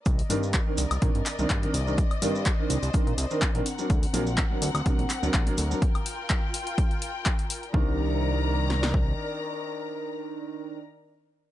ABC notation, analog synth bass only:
X:1
M:4/4
L:1/16
Q:"Swing 16ths" 1/4=125
K:Cm
V:1 name="Analog synth bass" clef=bass
C,, z G,,2 z2 C,, C,, B,, G,, z C,, G,, z C,,2 | z2 G,,2 z2 C,, C,, z B,, C,, z2 B,,, z2 | D,, z ^A,,,2 z2 D,, D,, C,, A,,, z D,, A,,, z D,, z | z16 |
C,,12 z4 | z16 |]